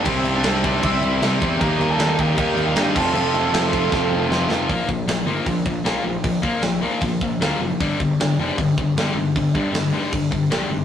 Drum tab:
CC |xxxxxxxx|xxxxxxxx|xxxx----|--------|
HH |--------|--------|--------|o-o-o-o-|
SD |--o---o-|--o---o-|--o-o-oo|--o---o-|
BD |o--oo--o|o--oo--o|---oo---|oo--oo--|

CC |--------|--------|--------|
HH |o-o-o-o-|o-o-o-o-|o-o-o-o-|
SD |--o---o-|--o---o-|--o---o-|
BD |oo--oo--|oo--oo--|oo--oo--|